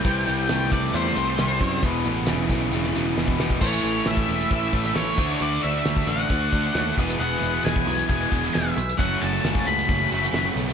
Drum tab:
CC |----------------|----------------|x---------------|----------------|
HH |x-x-x-x-x-x-x-x-|x-x-x-x-x-x-----|--x-x-xxx-xxx-xx|x-x-x-xxx-xxx-xx|
SD |----o----o--o---|----o----o--o-o-|----o------oo---|----o-------o---|
BD |o-----o-------o-|o-----o------o-o|o----o--o-o---o-|-----o--o-o---o-|

CC |----------------|----------------|
HH |x-x-x-xxx-xxx-xx|x-x-x-xxx-xxx-xx|
SD |----o-------o---|----o------oo---|
BD |-----o--o-o-----|o----o--o-------|